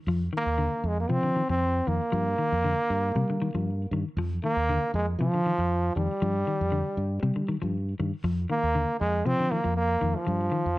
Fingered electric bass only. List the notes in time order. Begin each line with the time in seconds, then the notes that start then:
0.07 F2
0.46 D#2
0.84 F2
1.09 F3
1.49 F2
1.88 F2
2.13 G2
2.52 F2
2.90 G2
3.15 G3
3.54 G2
3.91 G2
4.17 F2
4.56 D#2
4.94 F2
5.19 F3
5.58 F2
5.96 F2
6.22 G2
6.61 F2
6.97 G2
7.23 G3
7.63 G2
7.99 G2
8.24 F2
8.63 D#2
9.01 F2
9.26 F3
9.65 F2
10.02 F2
10.27 G2
10.66 F2